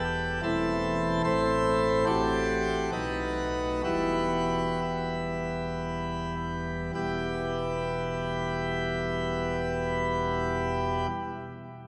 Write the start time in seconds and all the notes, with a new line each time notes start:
Already playing: E1 E2 G3 B3 E4
0.05 G4
0.43 E1 E2 A3 C4 E4 A4
1.24 A1 A2 A3 C4 E4 C5
2.06 A1 A2 A3 C4 F#4 G4
2.92 B1 B2 A3 B3 D#4 F#4
3.84 E1 E2 G3 B3 E4 F#4
4.82 E4
6.95 E1 E2 B2 G3 B3 E4 G4